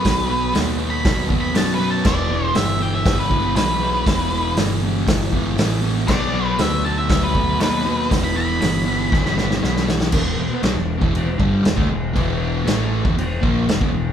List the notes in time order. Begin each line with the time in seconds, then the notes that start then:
Already playing: B4
0.04 B1 B2 F#3 B3, kick, snare, open hi-hat
0.29 B2 F#3 B3
0.54 D#2 B2 F#3 B3, snare, open hi-hat
0.78 B2 F#3 B3
0.90 B5
1.04 D#2 B2 F#3 B3, kick, snare, open hi-hat
1.29 B2 F#3 B3, kick
1.41 B5
1.53 F#2 B2 F#3 B3 A5, snare, open hi-hat
1.74 B2 B4
1.79 F#3 B3
1.90 A5
2.04 E1 E2 B2 E3 D5, kick, snare, crash
2.29 E2 B2 E3
2.54 G1 E2 B2 E3 E5, snare, open hi-hat
2.79 E2 B2 E3 G5
2.94 E5
3.04 G1 E2 B2 E3, kick, snare, open hi-hat
3.19 B4
3.29 E2 B2 E3, kick
3.55 B1 E2 B2 E3 B4, snare, open hi-hat
3.81 E2 B2 E3
4.05 E1 E2 B2 E3, kick, snare, open hi-hat
4.31 E2 B2 E3
4.56 G1 E2 B2 E3, snare, open hi-hat
4.81 E2 B2 E3
5.06 G1 E2 B2 E3, kick, snare, open hi-hat
5.32 E2 B2 E3, kick
5.57 A1 E2 B2 E3, snare, open hi-hat
5.82 E2 B2 E3
6.07 B1 B2 F#3 B3 D5, kick, snare, crash
6.33 B2 F#3 B3
6.45 B4
6.58 D2 B2 F#3 B3 E5, snare, open hi-hat
6.84 B2 F#3 B3 A5
6.98 E5
7.09 D2 B2 F#3 B3, kick, snare, open hi-hat
7.23 B4
7.34 B2 F#3 B3, kick
7.59 D#2 B2 F#3 B3 B4, snare, open hi-hat
7.84 B2 F#3 B3
8.10 E1 E2 B2 E3, kick, snare, open hi-hat
8.24 B5
8.35 E2 B2 E3 B5
8.60 G1 E2 B2 E3, snare, open hi-hat
8.86 E2 B2 E3
9.11 G1 E2 B2 E3, kick, snare
9.25 snare
9.36 E2 B2 E3, snare
9.51 snare
9.61 B1 E2 B2 E3, snare
9.76 snare
9.86 E2 B2 E3, snare
10.01 snare
10.12 E1 E2 B2, kick, crash
10.25 E1 E2 B2
10.38 E1 E2 B2
10.50 muted picked electric bass stroke, muted distorted electric guitar stroke
10.62 B1 B2 F#3, snare, crash
10.75 E1 E2 B2
11.00 E1 E2 B2 E3, kick
11.15 crash
11.26 E1 E2 B2
11.38 G1 G2 D3 G3, kick
11.64 E1 E2 B2, snare, crash
11.76 D2 D3 A3, kick
11.89 E1 E2 B2
12.14 E1 E2 B2 E3, kick, crash
12.65 A1 A2 E3 A3, snare, crash
13.03 E1 E2 B2, kick
13.16 E1 E2 B2, crash
13.41 A#1 A#2 F3 A#3, kick
13.68 E1 E2 B2, snare, crash
13.80 E1 E2 B2, kick
13.92 E1 E2 B2